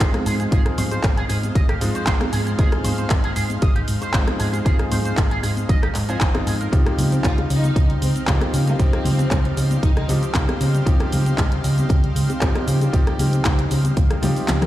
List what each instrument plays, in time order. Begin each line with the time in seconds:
Already playing: analog synth pad G#3 D#4 C5 F5
0.00 fingered electric bass G#1, grand piano F3 G#3 C4 D#4, clean electric guitar C5, kick, clap, closed hi-hat, high bongo, cabasa
0.14 cross-stick, closed hi-hat, high conga
0.26 fingered electric bass G#2, clean electric guitar G#4, open hi-hat, cabasa
0.40 clean electric guitar G#4, closed hi-hat, high bongo, cabasa
0.51 fingered electric bass G#1, grand piano F3 C4 D#4 G#4, clean electric guitar G#4, kick, closed hi-hat, cabasa
0.66 cross-stick, closed hi-hat
0.78 fingered electric bass G#2, clean electric guitar C5, open hi-hat, high conga, low conga, cabasa
0.91 clean electric guitar C5, closed hi-hat, high bongo, cabasa
1.03 fingered electric bass G#1, kick, clap, closed hi-hat, cabasa
1.17 clean electric guitar G#4, closed hi-hat
1.29 fingered electric bass G#2, clean electric guitar G#4, open hi-hat, high bongo, cabasa
1.43 closed hi-hat, high conga, cabasa
1.55 fingered electric bass G#1, clean electric guitar D#5, kick, closed hi-hat, cabasa
1.69 clean electric guitar G4, cross-stick, closed hi-hat
1.80 fingered electric bass G#2, grand piano F3 G#3 C4 D#4, open hi-hat, high bongo, cabasa
1.95 clean electric guitar C5, muted fingered electric bass stroke, closed hi-hat, cabasa
2.07 fingered electric bass G#1, clean electric guitar C5, kick, clap, closed hi-hat, cabasa
2.21 cross-stick, closed hi-hat, high bongo, high conga
2.33 fingered electric bass G#2, clean electric guitar G#4, open hi-hat, cabasa
2.47 clean electric guitar G#4, closed hi-hat, cabasa
2.58 fingered electric bass G#1, grand piano F3 C4 D#4 G#4, clean electric guitar G#4, kick, closed hi-hat, cabasa
2.72 cross-stick, closed hi-hat, high bongo
2.84 fingered electric bass G#2, clean electric guitar C5, open hi-hat, high conga, low conga, cabasa
2.98 clean electric guitar C5, closed hi-hat, cabasa
3.10 fingered electric bass G#1, kick, clap, closed hi-hat, high bongo, cabasa
3.24 clean electric guitar G#4, closed hi-hat
3.36 fingered electric bass G#2, clean electric guitar G#4, open hi-hat, cabasa
3.49 closed hi-hat, high conga, cabasa
3.62 fingered electric bass G#1, clean electric guitar D#5, kick, closed hi-hat, high bongo, cabasa
3.76 clean electric guitar G4, closed hi-hat
3.88 fingered electric bass G#2, open hi-hat, cabasa
4.02 clean electric guitar C5, closed hi-hat, high bongo, cabasa
4.13 fingered electric bass G#1, grand piano F3 G#3 C4 D#4, clean electric guitar C5, kick, clap, closed hi-hat, cabasa
4.28 cross-stick, closed hi-hat, high conga
4.39 fingered electric bass G#2, clean electric guitar G#4, open hi-hat, cabasa
4.53 clean electric guitar G#4, closed hi-hat, high bongo, cabasa
4.65 fingered electric bass G#1, grand piano F3 C4 D#4 G#4, clean electric guitar G#4, kick, closed hi-hat, cabasa
4.79 cross-stick, closed hi-hat
4.91 fingered electric bass G#2, clean electric guitar C5, open hi-hat, high bongo, high conga, low conga, cabasa
5.05 clean electric guitar C5, closed hi-hat, cabasa
5.17 fingered electric bass G#1, kick, clap, closed hi-hat, cabasa
5.31 clean electric guitar G#4, closed hi-hat
5.43 fingered electric bass G#2, clean electric guitar G#4, open hi-hat, high bongo, cabasa
5.56 closed hi-hat, high conga, cabasa
5.69 fingered electric bass G#1, clean electric guitar D#5, kick, closed hi-hat, low conga, cabasa
5.83 clean electric guitar G4, cross-stick, closed hi-hat, high bongo
5.95 fingered electric bass G#2, clap, open hi-hat, cabasa
6.09 grand piano F3 C4 D#4 C5, clean electric guitar G#4, closed hi-hat, cabasa
6.21 fingered electric bass G#1, clean electric guitar G#5, kick, clap, closed hi-hat, cabasa
6.34 grand piano F3 C4 D#4 F4, cross-stick, closed hi-hat, high bongo, high conga
6.47 fingered electric bass G#2, clean electric guitar G#4, open hi-hat, cabasa
6.61 clean electric guitar A#4, closed hi-hat, cabasa
6.71 fingered electric bass C#2, grand piano F3 C4 D#4 G4, synth arpeggio sound F3, analog synth pad G4 C5 F5, kick, closed hi-hat, cabasa
6.86 synth arpeggio sound G3, cross-stick, closed hi-hat, high bongo
6.98 fingered electric bass C#3, synth arpeggio sound G#3, open hi-hat, high conga, low conga, cabasa
7.12 synth arpeggio sound C4, closed hi-hat, cabasa
7.24 fingered electric bass C#2, synth arpeggio sound G#3, violin section F4, kick, clap, closed hi-hat, cabasa
7.38 synth arpeggio sound G3, closed hi-hat, high bongo
7.50 fingered electric bass C#3, synth arpeggio sound C#4, violin section D#4, open hi-hat, cabasa
7.64 synth arpeggio sound G3, closed hi-hat, high conga, cabasa
7.76 fingered electric bass C#2, synth arpeggio sound F3, kick, closed hi-hat, high bongo, cabasa
7.89 synth arpeggio sound G3, closed hi-hat
8.02 fingered electric bass C#3, synth arpeggio sound G#3, violin section C4, open hi-hat, cabasa
8.15 synth arpeggio sound C4, muted fingered electric bass stroke, closed hi-hat, cabasa
8.27 fingered electric bass C#2, grand piano F3 C4 D#4 G4, synth arpeggio sound G#3, kick, clap, closed hi-hat, high bongo, cabasa
8.41 synth arpeggio sound G3, cross-stick, closed hi-hat, high conga
8.53 fingered electric bass C#3, synth arpeggio sound C#4, open hi-hat, cabasa
8.67 synth arpeggio sound G3, violin section A#3, closed hi-hat, high bongo, cabasa
8.79 fingered electric bass C#2, grand piano F3 C4 D#4 G4, synth arpeggio sound F3, violin section C4, kick, closed hi-hat, cabasa
8.93 synth arpeggio sound G3, cross-stick, closed hi-hat
9.05 fingered electric bass C#3, synth arpeggio sound G#3, open hi-hat, high conga, low conga, cabasa
9.19 synth arpeggio sound C4, closed hi-hat, high bongo, cabasa
9.31 fingered electric bass C#2, synth arpeggio sound G#3, kick, clap, closed hi-hat, cabasa
9.45 synth arpeggio sound G3, closed hi-hat
9.57 fingered electric bass C#3, synth arpeggio sound C#4, open hi-hat, high bongo, cabasa
9.71 synth arpeggio sound G3, closed hi-hat, high conga, cabasa
9.83 fingered electric bass C#2, synth arpeggio sound F3, violin section D#4, kick, closed hi-hat, cabasa
9.97 synth arpeggio sound G3, violin section D#4, cross-stick, closed hi-hat
10.08 fingered electric bass C#3, grand piano F3 C4 D#4 G4, synth arpeggio sound G#3, open hi-hat, high bongo, cabasa
10.23 synth arpeggio sound C4, muted fingered electric bass stroke, closed hi-hat, cabasa
10.35 fingered electric bass C#2, synth arpeggio sound G#3, kick, clap, closed hi-hat, cabasa
10.49 synth arpeggio sound G3, cross-stick, closed hi-hat, high bongo, high conga
10.61 fingered electric bass C#3, synth arpeggio sound C#4, open hi-hat, cabasa
10.74 synth arpeggio sound G3, closed hi-hat, cabasa
10.85 fingered electric bass C#2, grand piano F3 C4 D#4 G4, synth arpeggio sound F3, kick, closed hi-hat, cabasa
11.00 synth arpeggio sound G3, cross-stick, closed hi-hat, high bongo
11.12 fingered electric bass C#3, synth arpeggio sound G#3, open hi-hat, high conga, low conga, cabasa
11.26 synth arpeggio sound C4, closed hi-hat, cabasa
11.38 fingered electric bass C#2, synth arpeggio sound G#3, kick, clap, closed hi-hat, high bongo, cabasa
11.52 synth arpeggio sound G3, closed hi-hat
11.64 fingered electric bass C#3, synth arpeggio sound C#4, open hi-hat, cabasa
11.78 synth arpeggio sound G3, closed hi-hat, high conga, cabasa
11.89 fingered electric bass C#2, synth arpeggio sound F3, kick, closed hi-hat, high bongo, cabasa
12.04 synth arpeggio sound G3, closed hi-hat
12.16 fingered electric bass C#3, synth arpeggio sound G#3, open hi-hat, cabasa
12.29 synth arpeggio sound C4, muted fingered electric bass stroke, closed hi-hat, high bongo, cabasa
12.41 fingered electric bass C#2, grand piano F3 C4 D#4 G4, synth arpeggio sound G#3, kick, clap, closed hi-hat, cabasa
12.55 synth arpeggio sound G3, cross-stick, closed hi-hat, high conga
12.67 fingered electric bass C#3, synth arpeggio sound C#4, open hi-hat, cabasa
12.81 synth arpeggio sound G3, closed hi-hat, high bongo, cabasa
12.92 fingered electric bass C#2, grand piano F3 C4 D#4 G4, synth arpeggio sound F3, kick, closed hi-hat, cabasa
13.07 synth arpeggio sound G3, cross-stick, closed hi-hat
13.19 fingered electric bass C#3, synth arpeggio sound G#3, open hi-hat, high bongo, high conga, low conga, cabasa
13.33 synth arpeggio sound C4, closed hi-hat, cabasa
13.45 fingered electric bass C#2, synth arpeggio sound G#3, kick, clap, closed hi-hat, cabasa
13.59 synth arpeggio sound G3, closed hi-hat
13.71 fingered electric bass C#3, synth arpeggio sound C#4, open hi-hat, high bongo, cabasa
13.84 synth arpeggio sound G3, closed hi-hat, high conga, cabasa
13.97 fingered electric bass C#2, synth arpeggio sound F3, kick, closed hi-hat, cabasa
14.10 synth arpeggio sound G3, cross-stick, closed hi-hat, high bongo
14.22 fingered electric bass C#3, grand piano F3 C4 D#4 G4, synth arpeggio sound G#3, open hi-hat, high tom, cabasa
14.36 synth arpeggio sound G3, muted fingered electric bass stroke, open hi-hat, cabasa
14.48 fingered electric bass C#2, synth arpeggio sound G3, snare, clap, closed hi-hat, cabasa
14.62 synth arpeggio sound G#3, cross-stick, closed hi-hat, mid tom, high bongo, high conga